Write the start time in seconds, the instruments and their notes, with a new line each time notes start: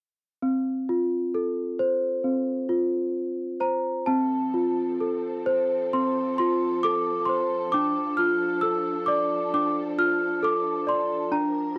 0.42 celesta C4
0.89 celesta F4
1.35 celesta A4
1.79 celesta C5
2.24 celesta C4
2.69 celesta F4
3.60 celesta C5 A#5
4.06 string section F3 C4 A4, celesta C4 A5
4.54 celesta F4
5.01 celesta A4
5.46 celesta C5
5.93 celesta C4 C6
6.38 celesta F4 C6
6.83 celesta A4 D6
7.20 celesta D6
7.25 celesta C5 C6
7.72 string section D4, celesta D4 D6
8.17 celesta F4 F6
8.61 celesta A4 E6
9.06 celesta D5 D6
9.54 celesta D4 D6
9.98 celesta F4 F6
10.43 celesta A4 D6
10.87 celesta D5 C6
11.32 celesta D4 A#5, string section D4 A#4